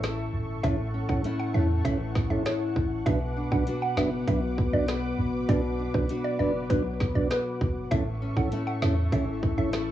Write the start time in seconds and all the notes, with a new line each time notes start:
Already playing: A1 A2 E3 A3 C#4 A4 E5 C#6, impact
0.03 E4, cross-stick, snare, closed hi-hat
0.34 G1
0.64 A1 A2 E3 C#4 A4 E5 F#5, kick, closed hi-hat
0.94 C#4
1.09 A1 E3 C#4 A4 F#5, kick
1.24 A3 C#4 E4, closed hi-hat
1.40 F#5
1.54 E2 E3 A3 C#4 A4 E5
1.85 A1 E3 C#4 A4 E5, kick, closed hi-hat
2.15 kick, snare
2.30 A1 E3 C#4 A4 E5
2.46 E4 C#5, cross-stick, snare, closed hi-hat
2.76 A1, kick
3.06 B1 B2 F#3 D4 B4 E5 D6, kick, closed hi-hat
3.37 D4
3.52 B1 F#3 D4 B4 F#5, kick
3.67 B3 D4 F#4, closed hi-hat
3.82 F#5
3.97 F#1 F#3 B3 D4 B4 E5, snare
4.27 B1 F#3 D4 B4 E5, kick, closed hi-hat
4.58 kick
4.73 B1 F#3 D4 B4 D5
4.88 F#4, cross-stick, snare, closed hi-hat
5.19 A1
5.49 B1 B2 F#3 D4 B4 D5, kick, closed hi-hat
5.79 D4
5.94 B1 F#3 D4 B4, kick
6.09 B3 D4 F#4, closed hi-hat
6.24 D5
6.39 F#1 F#3 B3 D4 B4 D5
6.70 B1 F#3 D4 B4, kick, closed hi-hat
7.00 kick, snare
7.15 B1 F#3 D4 B4 D5
7.31 F#4 B4, cross-stick, snare, closed hi-hat
7.61 G1, kick
7.91 A1 A2 E3 C#4 A4 E5 C#6, kick, closed hi-hat
8.22 C#4
8.37 A1 E3 C#4 A4 F#5, kick
8.52 A3 C#4 E4, closed hi-hat
8.67 F#5
8.82 E2 E3 A3 C#4 A4 E5, snare
9.12 A1 E3 C#4 A4 E5, kick, closed hi-hat
9.43 kick
9.58 A1 E3 C#4 A4 E5
9.73 E4, cross-stick, snare, closed hi-hat